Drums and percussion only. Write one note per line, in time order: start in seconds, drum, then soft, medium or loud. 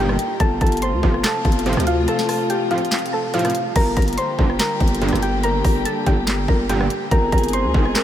0.09 cross-stick medium
0.19 closed hi-hat medium
0.40 kick loud
0.40 closed hi-hat medium
0.61 kick loud
0.61 closed hi-hat medium
0.67 closed hi-hat medium
0.72 closed hi-hat medium
0.77 closed hi-hat medium
0.82 closed hi-hat medium
1.03 kick loud
1.14 cross-stick medium
1.24 snare loud
1.24 clap loud
1.45 kick loud
1.45 closed hi-hat soft
1.52 closed hi-hat medium
1.59 closed hi-hat medium
1.66 closed hi-hat medium
1.73 closed hi-hat medium
1.77 cross-stick medium
1.77 closed hi-hat medium
1.87 closed hi-hat medium
2.08 closed hi-hat medium
2.19 snare medium
2.29 cross-stick medium
2.29 open hi-hat medium
2.50 closed hi-hat medium
2.71 closed hi-hat soft
2.78 closed hi-hat soft
2.85 closed hi-hat medium
2.92 snare loud
2.92 clap loud
2.92 closed hi-hat medium
2.99 closed hi-hat medium
3.06 closed hi-hat medium
3.34 closed hi-hat medium
3.39 closed hi-hat medium
3.45 cross-stick medium
3.45 closed hi-hat medium
3.50 closed hi-hat medium
3.55 closed hi-hat medium
3.76 kick loud
3.76 closed hi-hat medium
3.76 crash loud
3.97 kick medium
3.97 closed hi-hat medium
4.02 closed hi-hat medium
4.08 closed hi-hat medium
4.13 closed hi-hat medium
4.18 closed hi-hat medium
4.39 kick loud
4.50 cross-stick medium
4.59 snare loud
4.59 clap loud
4.80 kick loud
4.80 closed hi-hat soft
4.88 closed hi-hat medium
4.95 closed hi-hat medium
5.02 closed hi-hat medium
5.09 closed hi-hat medium
5.13 cross-stick medium
5.13 closed hi-hat medium
5.22 closed hi-hat medium
5.43 closed hi-hat medium
5.64 kick loud
5.64 open hi-hat medium
5.85 closed hi-hat medium
6.06 kick loud
6.06 closed hi-hat medium
6.27 snare loud
6.27 clap loud
6.27 closed hi-hat medium
6.48 kick loud
6.69 closed hi-hat medium
6.81 cross-stick medium
6.90 closed hi-hat medium
7.11 kick loud
7.11 closed hi-hat medium
7.32 kick medium
7.32 closed hi-hat medium
7.38 closed hi-hat medium
7.44 closed hi-hat medium
7.48 closed hi-hat medium
7.53 closed hi-hat medium
7.74 kick loud
7.85 cross-stick medium
7.95 snare loud
7.95 clap loud